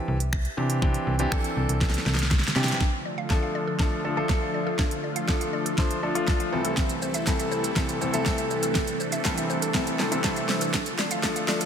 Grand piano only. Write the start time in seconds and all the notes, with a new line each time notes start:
Already playing: E3 C4 D4 G4
0.57 E3 C4 D4 G4
0.82 E3 C4 D4 G4
1.19 E3 C4 D4 G4
1.31 E3 C4 D4 A4
2.55 E3 C4 D4 G4
3.30 F3 A3 D4 A4
3.80 F3 A3 D4 A4
4.04 F3 A3 D4 A4
4.17 F3 A3 D4 A4
5.28 F3 A3 D4 A4
5.78 F3 A3 D4 C5
6.03 F3 A3 D4 A4
6.15 F3 A3 D4 F4
6.52 C2 E3 A3 C4 A4
7.26 C2 E3 A3 C4 A4
7.76 C2 E3 A3 C4 A4
8.01 C2 E3 A3 C4 A4
8.13 C2 E3 A3 C4 A4
9.25 C2 E3 A3 C4 A4
9.74 C2 E3 A3 C4 A4
9.99 C2 E3 A3 C4 A4
10.11 C2 E3 A3 C4 A4
10.24 E5
11.23 F3 A3 D4 A4